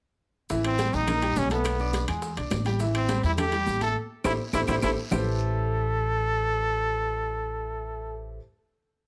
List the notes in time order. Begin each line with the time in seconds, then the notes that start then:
0.49 A1 E3 E4 E5, high bongo, high conga, long guiro, maracas
0.64 C4, high bongo, high conga, high timbale, claves, maracas
0.78 G3 G4 G5, high bongo, high conga, high timbale, short guiro, maracas
0.93 A#1 D#4, high bongo, high conga, short guiro, maracas
1.07 A#3 A#4 A#5, high bongo, high conga, low conga, high timbale, long guiro, claves, maracas
1.22 G3 G4 G5, high conga, high timbale, maracas
1.36 B1 C#4, high bongo, low bongo, high conga, short guiro, maracas
1.50 A3 B3 A4 A5, high bongo, high conga, high timbale, short guiro, maracas
1.64 high bongo, high conga, high timbale, long guiro, claves, maracas
1.79 D4 D5 D6, high bongo, high conga, maracas
1.93 high bongo, high conga, high timbale, short guiro, maracas
2.08 E2 G#3 G#4 G#5, high bongo, high timbale, short guiro, claves, maracas
2.22 high bongo, high conga, long guiro, maracas
2.36 B1 D4 D5 D6, high conga, high timbale, maracas
2.51 A1, high bongo, low bongo, high conga, high timbale, low timbale, short guiro, claves, maracas
2.65 G3 G4 G5, high bongo, high conga, high timbale, short guiro, maracas
2.79 E3 E4 E5, high bongo, high conga, long guiro, maracas
2.94 C4, high bongo, high conga, high timbale, claves, maracas
3.09 G3 G4 G5, high bongo, high conga, high timbale, short guiro, maracas
3.23 E2 E4, high bongo, high conga, short guiro, maracas
3.37 A3 G4 A4 A5, high bongo, high conga, low conga, high timbale, long guiro, claves, maracas
3.52 G3 G4 G5, high conga, high timbale, maracas
3.66 A1, high bongo, low bongo, high conga, short guiro, maracas
3.81 A3 A4 A5, high bongo, high conga, high timbale, short guiro, maracas
4.24 A1 E4 G4 A4 C5, low bongo, high conga, high timbale, long guiro, claves, maracas
4.53 A1 E4 G4 A4 C5, low bongo, high conga, high timbale, long guiro, claves, maracas
4.67 A1 E4 G4 A4 C5, low bongo, high conga, high timbale, long guiro, claves, maracas
4.82 A1 E4 G4 A4 C5, low bongo, high conga, high timbale, long guiro, claves, maracas
5.11 A1 A3 E4 G4 A4 B4 C5, low bongo, low conga, low timbale, long guiro, claves, maracas